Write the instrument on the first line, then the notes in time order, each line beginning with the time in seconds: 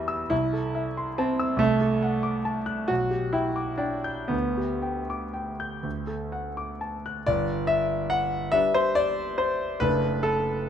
grand piano
Already playing: E2 G3 B4 E5 B5
0.08 E6
0.30 C2 E4
0.53 A4
0.75 E5
0.97 C6
1.18 C4 A5
1.40 E6
1.57 C2 A3
1.81 A4
2.02 F#5
2.23 D6
2.45 A5
2.66 F#6
2.88 B1 F#4
3.10 G4
3.33 E4 G5
3.56 D6
3.78 D4 G5
4.04 G6
4.28 D2 B3
4.57 G4
4.82 G5
5.10 D6
5.34 G5
5.60 G6
5.83 D2
6.07 A4
6.32 F#5
6.57 D6
6.81 A5
7.06 F#6
7.27 G1 D5
7.67 E5
8.10 F#5
8.52 G3 D4 B4 E5
8.74 C5
8.95 D5
9.38 C5
9.80 F#1 A3 D4 A4 B4
10.23 A4